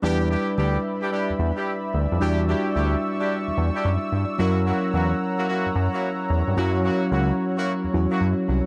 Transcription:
0.02 E2 G3 D4 E4 G4 B4 D5 E5 B5 E6
0.30 G3 D4 E4 G4
0.57 D2 G3 D4 E4 G4
1.02 G3 D4 E4 G4
1.11 G3 D4 E4 G4
1.30 E2
1.39 E2
1.56 G3 D4 E4 G4
1.94 D2
2.12 F2
2.20 E2 G3 D4 E4 F#4 G4 C#6
2.48 G3 D4 E4 G4
2.75 D2 G3 D4 E4 G4
3.20 G3 D4 E4 G4
3.48 E2
3.58 E2
3.74 G3 D4 E4 G4
3.85 F#2
4.12 G2
4.38 F#2 F#3 A#3 C#4 E4 F#4 A#4 C#5 F#5 A#5
4.66 F#3 A#3 E4 F#4
4.93 E2 F#3 A#3 E4 F#4
5.38 F#3 A#3 E4 F#4
5.48 F#3 A#3 E4 F#4
5.66 F#2
5.75 F#2
5.93 F#3 A#3 E4 F#4
6.30 E2
6.48 G2
6.57 F#2 F#3 A#3 C#4 E4 F#4
6.84 F#3 A#3 E4 F#4
7.12 C#2 F#3 A#3 E4 F#4
7.56 F#3 A#3 E4 F#4
7.84 E2
7.93 E2 F#3 C#4 E4 F#4
8.11 F#3 A#3 E4 F#4
8.21 F#2
8.48 C2

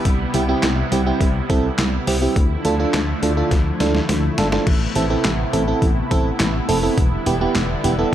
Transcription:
Already playing: G3 B3 E4
0.05 C2 C3, kick, closed hi-hat
0.34 C2 C4 E4 G4, closed hi-hat
0.49 C4 E4 G4
0.63 C2, snare, clap, closed hi-hat
0.92 C2 C4 E4 G4, closed hi-hat
1.07 C4 E4 G4
1.21 C2, kick, closed hi-hat
1.50 C2 C4 E4 A4, kick, closed hi-hat
1.78 C2, snare, clap, closed hi-hat
2.07 C2 C4 E4 G4, open hi-hat
2.22 C4 E4 G4
2.36 D2 D3 F3 A3 E4, kick, closed hi-hat
2.65 D2 D4 F4 A4, closed hi-hat
2.80 D4 F4 A4
2.94 D2, snare, clap, closed hi-hat
3.22 D2 D4 F4 A4, closed hi-hat
3.37 D4 F4 A4
3.51 D2, kick, snare, closed hi-hat
3.80 D2 D4 F4 A4, snare, closed hi-hat
3.95 snare
4.09 D2, snare, closed hi-hat
4.38 G1 D4 F4 A4, snare, closed hi-hat
4.52 D4 F4 A4, snare
4.66 A1 C3 B3, kick, crash
4.95 A1 C4 E4 A4, closed hi-hat
5.10 C4 E4 A4
5.24 A1, snare, clap, closed hi-hat
5.53 A1 C4 E4 A4, closed hi-hat
5.68 C4 E4 A4
5.82 A1, kick, closed hi-hat
6.11 A1 C4 E4 A4, kick, closed hi-hat
6.40 A1, snare, clap, closed hi-hat
6.69 F1 C4 E4 A4, open hi-hat
6.83 C4 E4 A4
6.98 E1 D3 G3, kick, closed hi-hat
7.26 E1 B3 E4 G4, closed hi-hat
7.41 B3 E4 G4
7.55 E1, snare, clap, closed hi-hat
7.84 E1 B3 E4 G4, closed hi-hat
7.99 B3 E4 A4

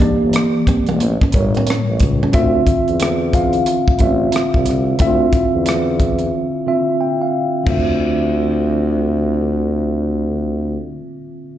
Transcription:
Already playing: E3 A#3 G4 D5
0.00 D4, kick, closed hi-hat
0.23 G1
0.33 muted nylon-string guitar stroke, cross-stick, closed hi-hat
0.67 E1 C4, kick, closed hi-hat
0.87 E1 A#3, closed hi-hat
1.00 A1, closed hi-hat
1.21 G1 C#4, kick
1.32 G1 A2 G3 A#4 C#5, muted nylon-string guitar stroke, kick, closed hi-hat
1.54 C4, closed hi-hat
1.67 C#4, cross-stick, closed hi-hat
1.89 A1
2.00 C#2, muted nylon-string guitar stroke, kick, closed hi-hat
2.23 C#4
2.32 D2 D3 C4 F4 E5, kick, closed hi-hat
2.67 kick, closed hi-hat
2.88 E2, closed hi-hat
3.00 cross-stick, closed hi-hat
3.33 D3 C4 F4 F5, kick, closed hi-hat
3.53 closed hi-hat
3.66 closed hi-hat
3.88 A1, kick
3.99 A1 D3 C4 F4 E5, kick, closed hi-hat
4.32 cross-stick, closed hi-hat
4.54 C2, kick
4.66 C2, cross-stick, closed hi-hat
4.99 D2 D3 C4 E4 E5, kick, closed hi-hat
5.08 F4
5.33 kick, closed hi-hat
5.55 E2
5.66 cross-stick, closed hi-hat
6.00 kick, closed hi-hat
6.19 closed hi-hat
6.67 D3 C4 F4 E5
7.01 G5
7.22 F5
7.63 D2 D3 C4, kick, floor tom, crash
7.68 F4 E5

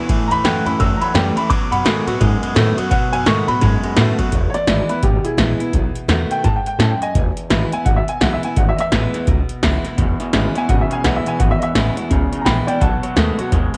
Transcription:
0.09 A1 A2 E3, kick, ride
0.27 E2 A2 E3 A#5, ride
0.32 B5
0.44 F#2 A2 E3 F#3 A3 C#4 E4 G5, snare, ride
0.66 F#2 A2 E3 C#4 E4 B5, ride
0.79 E2 F#2 A2 F#3 E6, kick, ride
0.97 A#5, muted upright bass stroke
1.01 A2 F#3 B5, ride
1.14 F#2 A2 E3 G3 A3 C#4 E4 G5, snare, ride
1.36 A2 E3 C#4 E4 B5, muted upright bass stroke, ride
1.50 B1 B2 F#3 D6, kick, ride
1.71 F#2 B2 F#3 F#5 B5, ride
1.85 G#2 B2 D#3 G#3 A3 B3 F#4, snare, ride
2.07 A2 B2 F#3 B3 F#4, ride
2.20 F#2 G#2 B2 G#3, kick, ride
2.42 B2 G#3, muted upright bass stroke, ride
2.55 A2 B2 D#3 A3 B3 F#4, snare, ride
2.77 B2 F#3 B3 F#4, muted upright bass stroke, ride
2.90 B1 B2 F#3 F#5, kick, ride
3.12 F#2 B2 F#3 G#5, ride
3.26 G#2 B2 D#3 G#3 A3 B3 F#4 C#6, snare, ride
3.48 A2 B2 F#3 B3 F#4 B5, ride
3.61 F#2 G#2 B2 G#3, kick, snare, ride
3.83 B2 G#3, muted upright bass stroke, ride
3.97 A2 B2 D#3 A3 B3 F#4, snare, ride
4.18 B2 F#3 B3 F#4, muted upright bass stroke, kick, ride
4.32 E1 E2, kick, closed hi-hat
4.50 C#5
4.54 D5, muted upright bass stroke, snare, closed hi-hat
4.67 G#1 E3 G#3 B3 E4, snare, closed hi-hat
4.89 B3 E4 B4, muted upright bass stroke, snare, closed hi-hat
5.03 G#1 B2 G4, kick, closed hi-hat
5.24 E4 G#4, muted upright bass stroke, closed hi-hat
5.37 A#1 E3 G#3 B3 E4, snare, closed hi-hat
5.59 B3 E4, muted upright bass stroke, closed hi-hat
5.73 B1 B2, kick, closed hi-hat
5.95 muted upright bass stroke, closed hi-hat
6.08 E2 D#3 A3 B3 F#4, snare, closed hi-hat
6.30 G5, muted upright bass stroke, closed hi-hat
6.44 G#2 A5, kick, snare, closed hi-hat
6.56 G5
6.65 G5, muted upright bass stroke, closed hi-hat
6.79 F#2 A2 A5, snare, closed hi-hat
6.91 G5
7.01 D#5 G#5, muted upright bass stroke, closed hi-hat
7.15 E1 E2, kick, closed hi-hat
7.37 muted upright bass stroke, closed hi-hat
7.50 G#1 E3 G#3 B3 E4, snare, closed hi-hat
7.72 B3 E4 G#5, muted upright bass stroke, closed hi-hat
7.85 G#1 B2 F#5, kick, closed hi-hat
7.96 E5
8.08 G#5, closed hi-hat
8.21 B1 E3 G#3 B3 E4 F#5, snare, closed hi-hat
8.33 E5
8.43 B3 E4 G#5, muted upright bass stroke, closed hi-hat
8.56 G#1 E2 F#5, kick, closed hi-hat
8.69 E5
8.76 D#5, muted upright bass stroke, snare, closed hi-hat
8.80 E5
8.92 A1 E3 G#3 B3 E4, snare, closed hi-hat
9.14 muted upright bass stroke, snare, closed hi-hat
9.27 C#2 B2, kick, closed hi-hat
9.49 muted upright bass stroke, closed hi-hat
9.63 C#2 E3 G#3 B3 E4, kick, snare, closed hi-hat
9.84 B3 E4, muted upright bass stroke, snare, closed hi-hat
9.98 E1 E2 B2, kick, closed hi-hat
10.20 E2 B2, muted upright bass stroke, snare, closed hi-hat
10.33 G#1 E2 C#3 E3 G#3 B3 E4, snare, closed hi-hat
10.55 E2 B2 B3 E4 G#5, muted upright bass stroke, snare, closed hi-hat
10.69 G#1 E2 B2 C#3 F#5, kick, closed hi-hat
10.81 E5
10.90 E2 C#3 G#5, muted upright bass stroke, closed hi-hat
11.04 B1 E2 B2 E3 G#3 B3 E4 F#5, snare, closed hi-hat
11.16 E5
11.26 E2 B2 G#5, muted upright bass stroke, closed hi-hat
11.39 G#1 E2 B2 F#5, kick, closed hi-hat
11.51 E5
11.58 E2 B2 D#5, closed hi-hat
11.63 E5
11.75 A1 E2 C#3 E3 G#3 B3 E4, snare, closed hi-hat
11.97 E2 B2 B3 E4, closed hi-hat
12.10 C#2 E2 B2 C#3, kick, closed hi-hat
12.32 E2 C#3, muted upright bass stroke, closed hi-hat
12.41 G5 A#5
12.45 A#1 E2 B2 E3 G#3 B3 E4 B5, snare, closed hi-hat
12.67 E2 B2 B3 E4 D5 G5, muted upright bass stroke, closed hi-hat
12.80 B1 B2 F#3 F#5 A5, kick, closed hi-hat
13.03 B2 F#3, muted upright bass stroke, closed hi-hat
13.16 D#2 B2 D#3 G#3 A3 B3 F#4, snare, closed hi-hat
13.38 B2 F#3 B3 F#4, muted upright bass stroke, closed hi-hat
13.52 D#2 G#2 B2 G#3, kick, snare, closed hi-hat
13.74 B2, closed hi-hat

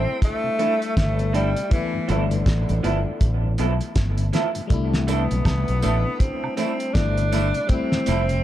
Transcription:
Already playing: G3 A3 C4 D4 E4
0.06 C3
0.22 A3, kick, closed hi-hat
0.44 C3
0.59 E3 A3 D4 E4 A4, closed hi-hat
0.82 closed hi-hat
0.97 G1 A3, kick, snare, closed hi-hat
1.18 C3, closed hi-hat
1.33 E3 G3 A3 D4 E4 A4, closed hi-hat
1.56 C3, closed hi-hat
1.70 E3 A3, kick, closed hi-hat
1.74 B3 E4
1.94 G2 D3
2.08 G1 D3 F3 A3 B3 E4 A4, closed hi-hat
2.31 G2 D3, closed hi-hat
2.46 A1, kick, snare, closed hi-hat
2.69 A1 G2 D3, closed hi-hat
2.83 G1 F3 A3 B3 E4 A4, closed hi-hat
3.06 G2 D3
3.21 A1, kick, closed hi-hat
3.43 G2 D3
3.58 B1 F3 A3 B3 E4 A4, closed hi-hat
3.81 closed hi-hat
3.96 G1, kick, snare, closed hi-hat
4.18 G2 D3, closed hi-hat
4.33 F3 A3 B3 E4 A4, snare, closed hi-hat
4.55 G2 D3, closed hi-hat
4.67 C2 G3 A3 D4, kick, closed hi-hat
4.73 E4
4.93 C3, snare
5.07 E3 A3 B3 D4 E4 A4, closed hi-hat, tambourine
5.30 B1 C3, closed hi-hat
5.45 C2, kick, snare, closed hi-hat, high woodblock
5.68 B1 C3, closed hi-hat
5.82 A1 E3 A3 D4 E4 A4, closed hi-hat, tambourine
6.06 C3
6.19 C4, kick, closed hi-hat
6.43 C3, high woodblock
6.56 E3 A3 C4 D4 E4 A4, closed hi-hat, tambourine
6.80 closed hi-hat
6.93 G1 G3 A3 D4 E4, kick, snare, closed hi-hat
7.17 C3, closed hi-hat
7.32 E3 A3 D4 E4 A4, closed hi-hat, tambourine
7.54 C3, closed hi-hat
7.67 G3 A3 C4, kick, closed hi-hat
7.71 C4 E4
7.92 F2 C3, snare
8.06 F1 F3 A3 C4 E4 A4, closed hi-hat, tambourine
8.29 F2 C3, closed hi-hat

